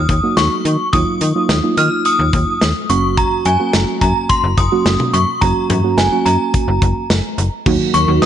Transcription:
Already playing: synth bell D#6
0.09 fm bass D#2, kick, closed hi-hat
0.23 synth keys F#3 A#3 D#4 F#4
0.37 fm bass D#2, synth bell C#6, snare, closed hi-hat
0.65 fm bass D#3, closed hi-hat
0.93 fm bass D#2, synth keys F#3 A#3 D#4 F4, synth bell D#6, kick, closed hi-hat
1.21 fm bass D#3, closed hi-hat
1.36 synth keys F#3 A#3 D#4 F4
1.49 fm bass D#2, snare, closed hi-hat
1.63 synth keys F#3 A#3 D#4 F4
1.77 fm bass D#3, synth bell F6, closed hi-hat
2.05 synth bell D#6, closed hi-hat
2.19 fm bass D#2
2.33 fm bass D#2, kick, closed hi-hat
2.61 fm bass D#2, snare, closed hi-hat
2.90 fm bass F#1, synth keys F#3 A#3 C#4 F#4, synth bell C#6, closed hi-hat
3.17 synth bell A#5, kick, closed hi-hat
3.45 fm bass F#2, synth bell G#5, closed hi-hat
3.60 synth keys F#3 A#3 C#4 F#4
3.73 fm bass F#1, snare, closed hi-hat
4.01 fm bass F#2, synth bell A#5, kick, closed hi-hat
4.29 synth bell C6, kick, closed hi-hat
4.44 fm bass F#1
4.57 fm bass F#1, synth bell D#6, kick, closed hi-hat
4.72 synth keys F#3 A#3 C#4 F#4
4.86 fm bass F#1, snare, closed hi-hat
5.00 mid tom
5.13 fm bass F#2, synth bell C#6, closed hi-hat
5.41 fm bass F#1, synth keys F#3 A#3 C#4 F#4, synth bell A#5, kick, closed hi-hat
5.70 fm bass F#2, closed hi-hat, mid tom
5.84 synth keys F#3 A#3 C#4 F#4
5.98 fm bass F#1, synth bell G#5, snare, closed hi-hat
6.12 synth keys F#3 A#3 C#4 F#4
6.26 fm bass F#2, synth bell A#5, closed hi-hat
6.54 kick, closed hi-hat
6.68 fm bass F#1
6.82 fm bass F#1, kick, closed hi-hat
7.10 fm bass F#1, snare, closed hi-hat
7.38 fm bass F#1, closed hi-hat
7.66 fm bass D#2, synth arpeggio sound D#3, string machine D#3 D#4 F#4 A#4, synth keys F#3 A#3 D#4 F#4, kick, crash
7.94 fm bass D#2, synth arpeggio sound F#3, synth bell C#6, closed hi-hat
8.08 fm bass D#2, synth keys F#3 A#3 D#4 F#4
8.22 fm bass D#2, synth arpeggio sound D#3, synth bell D#6, snare, closed hi-hat

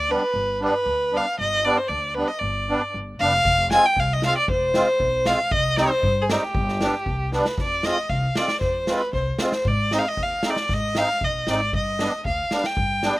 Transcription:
Already playing: upright bass D2, violin D5
0.10 accordion G3 B3 D4, violin B4
0.34 upright bass G1
0.61 accordion G3 B3 D4
0.65 violin B4
0.86 upright bass D2
1.12 accordion G3 B3 D4
1.17 violin F5
1.39 upright bass G1, violin D#5
1.64 accordion G3 B3 D4, violin D5
1.77 violin C5
1.88 upright bass D2, violin D5
2.15 accordion G3 B3 D4, violin B4
2.27 violin D#5
2.39 upright bass G1, violin D5
2.69 accordion G3 B3 D4
2.94 upright bass G1
3.20 upright bass F1, accordion G3 B3 D4, violin F5
3.45 upright bass F1, kick
3.71 accordion G#3 C4 F4, violin G#5, snare
3.85 violin G5
3.96 upright bass C2, violin F5, kick
4.13 violin D#5
4.22 accordion G#3 C4 F4, violin F5, snare
4.37 violin D5
4.48 upright bass F1, violin C5, kick
4.74 accordion G#3 C4 F4, snare
5.00 upright bass B1, kick
5.25 accordion G#3 C4 F4, violin F5, snare
5.51 upright bass C2, violin D#5, kick
5.76 accordion G3 C4 D#4, violin C5, snare
6.03 upright bass G2, kick
6.21 violin G#4
6.30 accordion G3 C4 D#4, violin G4, snare
6.54 upright bass G1, kick
6.68 snare
6.81 accordion G3 B3 D4, snare
7.06 upright bass C2, kick
7.33 accordion G3 B3 D4, violin B4, snare
7.45 snare
7.58 upright bass F2, kick, snare
7.62 violin D5
7.83 accordion G#3 C4 F4, violin D#5, snare
8.09 upright bass C2, violin F5, kick
8.36 accordion G#3 C4 F4, violin D5, snare
8.48 snare
8.61 upright bass F2, violin C5, kick, snare
8.87 accordion G#3 C4 F4, violin B4, snare
9.13 upright bass C2, violin C5, kick
9.39 accordion G#3 C4 F4, snare
9.43 violin C5
9.52 snare
9.65 upright bass G#2, violin D5, kick
9.91 accordion G#3 C4 D#4, violin D#5, snare
9.99 violin F5
10.08 violin D#5
10.17 upright bass D#2, kick
10.23 violin F5
10.43 accordion G#3 C4 D#4, snare
10.50 violin D5
10.56 snare
10.69 upright bass G#2, kick, snare
10.74 violin D#5
10.95 accordion G#3 C4 D#4, violin F5, snare
11.21 upright bass B1, violin D#5, kick
11.47 upright bass G#1, accordion G#3 C4 D#4, violin D5, snare
11.73 upright bass G2, violin D#5, kick
11.99 accordion G3 B3 D4, snare
12.25 upright bass D2, violin F5, kick
12.51 accordion G3 B3 D4, snare
12.64 violin G5, snare
12.77 upright bass G2, kick
13.03 accordion G3 B3 D4, snare

